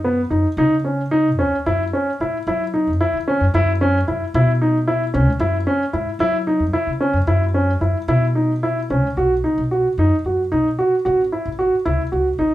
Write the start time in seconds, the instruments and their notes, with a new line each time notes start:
Already playing: upright bass F#2
0.04 grand piano B3
0.30 upright bass F#2, grand piano D#4
0.57 upright bass C#3, grand piano D#4
0.84 grand piano C#4
1.11 grand piano D#4
1.39 upright bass D#2, grand piano C#4
1.66 upright bass F#2, grand piano E4
1.93 grand piano C#4
2.20 upright bass A2, grand piano E4
2.47 upright bass F#3, grand piano E4
2.74 grand piano D#4
2.87 upright bass F#2
3.01 grand piano E4
3.13 upright bass D#3
3.28 grand piano C#4
3.41 upright bass F#2
3.54 upright bass F#2, grand piano E4
3.81 grand piano C#4
4.08 upright bass F#2, grand piano E4
4.34 upright bass B2, grand piano E4
4.62 grand piano D#4
4.88 grand piano E4
5.14 upright bass C#2, grand piano C#4
5.39 upright bass F#2, grand piano E4
5.67 grand piano C#4
5.93 upright bass G#2, grand piano E4
6.19 upright bass F#3, grand piano E4
6.47 grand piano D#4
6.60 upright bass F#2
6.73 grand piano E4
6.87 upright bass C#3
7.00 grand piano C#4
7.13 upright bass F#2
7.27 upright bass F#2, grand piano E4
7.54 grand piano C#4
7.81 upright bass F#2, grand piano E4
8.08 upright bass B2, grand piano E4
8.35 grand piano D#4
8.63 grand piano E4
8.90 upright bass C#2, grand piano C#4
9.17 upright bass B1, grand piano F#4
9.44 grand piano D#4
9.58 upright bass B1
9.71 grand piano F#4
9.98 upright bass F#2, grand piano D#4
10.25 upright bass F#2, grand piano F#4
10.52 upright bass B1, grand piano D#4
10.79 grand piano F#4
11.05 upright bass A1, grand piano F#4
11.32 grand piano E4
11.46 upright bass A1
11.59 grand piano F#4
11.85 upright bass C#2, grand piano E4
12.12 upright bass C#2, grand piano F#4
12.38 upright bass A1, grand piano D#4